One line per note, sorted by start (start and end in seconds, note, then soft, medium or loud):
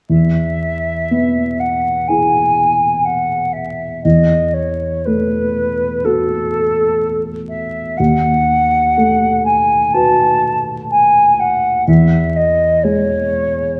0.09 4.00 E2 soft
0.09 1.61 E5 medium
1.11 2.68 B3 soft
1.59 2.09 F#5 soft
2.08 4.01 E4 soft
2.08 4.01 G#4 soft
2.08 3.06 G#5 medium
3.05 3.54 F#5 soft
3.52 4.03 E5 soft
4.03 7.95 E2 soft
4.03 4.55 D#5 medium
4.53 5.07 C#5 soft
5.05 6.63 A3 soft
5.05 6.06 B4 medium
6.05 7.95 F#4 soft
6.05 7.22 A4 medium
6.05 7.95 A4 soft
7.49 7.99 E5 medium
7.97 11.85 D#2 soft
7.97 9.45 F#5 medium
8.98 10.53 A3 soft
9.45 9.95 G#5 medium
9.93 11.84 F#4 soft
9.93 11.84 B4 soft
9.93 10.63 A5 medium
10.91 11.41 G#5 medium
11.40 11.87 F#5 medium
11.87 13.80 E2 soft
11.87 12.37 E5 medium
12.36 12.85 D#5 medium
12.83 13.80 G#3 soft
12.83 13.80 C#5 medium